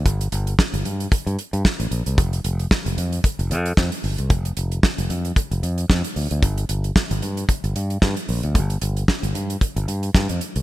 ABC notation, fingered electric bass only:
X:1
M:4/4
L:1/16
Q:"Swing 16ths" 1/4=113
K:Gdor
V:1 name="Fingered electric bass" clef=bass
G,,,2 G,,,2 z G,,, G,,2 z G,, z G,, z A,,, B,,, C,, | F,,,2 F,,,2 z F,,, F,,2 z F,,, F,,2 F,, z G,,, C,, | F,,,2 F,,,2 z F,,, F,,2 z F,,, F,,2 F,, z D,, D,, | G,,,2 G,,,2 z G,,, G,,2 z G,,, G,,2 G,, z B,,, D,, |
G,,,2 G,,,2 z G,,, G,,2 z G,,, G,,2 G,, F,, z C,, |]